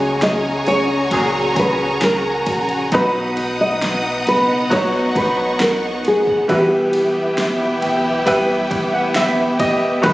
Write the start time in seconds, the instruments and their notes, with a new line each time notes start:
Already playing: sub bass C#2, grand piano C#3 F#3 A#3 C#4 G#4, steel-string acoustic guitar C#3 F#4 G#4, violin section C#4 G#5 A#5, string section G#4 F#5 G#5 C#6, nylon-string guitar C#5
0.00 ride
0.22 steel-string acoustic guitar G#4, nylon-string guitar D#5, snare, ride
0.67 sub bass C#2, steel-string acoustic guitar C#4, nylon-string guitar C#5, ride
1.11 sub bass C#2, grand piano A#2 F#3 C#4 G#4, steel-string acoustic guitar F#4, string section A#5, kick, ride
1.56 steel-string acoustic guitar C#4, nylon-string guitar B4, kick, ride
2.01 steel-string acoustic guitar G#4, nylon-string guitar A#4, snare, ride
2.46 sub bass A#1, steel-string acoustic guitar F#4, kick, ride
2.69 ride
2.92 sub bass B1, steel-string acoustic guitar B2 B4, grand piano F#3 B3 D#4 B4, string section B3 D#5 D#6, violin section B3 D#4 F#5, nylon-string guitar B4, kick, ride
3.37 steel-string acoustic guitar D#4, ride
3.61 nylon-string guitar D#5
3.82 steel-string acoustic guitar B4, snare, ride
4.27 sub bass F#1, steel-string acoustic guitar B3, nylon-string guitar B4, ride
4.70 sub bass B1, grand piano F#3 B3 D#4 C#5, steel-string acoustic guitar D#4, nylon-string guitar C#5, string section C#6, kick, ride
5.15 steel-string acoustic guitar B3, nylon-string guitar B4, kick, ride
5.59 nylon-string guitar A#4, snare, ride
6.04 sub bass D#1, steel-string acoustic guitar D#4, nylon-string guitar G#4, ride
6.27 kick
6.48 sub bass E1, grand piano B2 G3 B3 E4 B4, steel-string acoustic guitar E3 B4, violin section B3 G4 E5, string section E4 G5, nylon-string guitar G4, kick, ride
6.93 steel-string acoustic guitar G4, ride
7.38 steel-string acoustic guitar B4, snare, ride
7.60 nylon-string guitar F#4
7.82 sub bass B1, steel-string acoustic guitar B3, grand piano G5, ride
8.26 grand piano G3 B3 E4 B4 G5, steel-string acoustic guitar G4, kick, ride
8.71 sub bass E1, steel-string acoustic guitar B3, kick, ride
8.94 grand piano F#5
9.15 steel-string acoustic guitar B4, grand piano E5, snare, ride
9.59 sub bass E1, steel-string acoustic guitar G4, grand piano D#5, kick, ride
10.02 sub bass D#1, grand piano D#3 F#3 B3 D#4 B4, steel-string acoustic guitar D#3 B4, violin section B3 F#4 D#5, nylon-string guitar B4, string section D#5 F#5 D#6, kick, ride